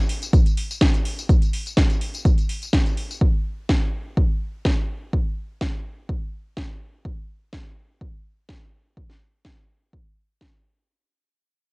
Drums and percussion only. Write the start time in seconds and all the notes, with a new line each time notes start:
0.09 open hi-hat
0.22 closed hi-hat, tambourine
0.33 kick, closed hi-hat, tambourine
0.46 closed hi-hat, tambourine
0.57 open hi-hat
0.71 tambourine
0.81 kick, snare, closed hi-hat, tambourine
0.94 closed hi-hat, tambourine
1.05 open hi-hat
1.19 tambourine
1.29 kick, closed hi-hat, tambourine
1.42 closed hi-hat, tambourine
1.53 open hi-hat
1.66 closed hi-hat, tambourine
1.77 kick, snare, closed hi-hat, tambourine
1.90 closed hi-hat, tambourine
2.01 open hi-hat
2.14 closed hi-hat, tambourine
2.25 kick, closed hi-hat, tambourine
2.38 closed hi-hat, tambourine
2.49 open hi-hat
2.62 closed hi-hat, tambourine
2.73 kick, snare, closed hi-hat, tambourine
2.86 closed hi-hat, tambourine
2.97 open hi-hat
3.11 tambourine
3.21 kick
3.69 kick, snare
4.17 kick
4.65 kick, snare
5.13 kick
5.61 kick, snare
6.09 kick
6.57 kick, snare
7.05 kick
7.53 kick, snare
8.01 kick
8.49 kick, snare
8.97 kick
9.10 snare
9.45 kick, snare
9.93 kick
10.41 kick, snare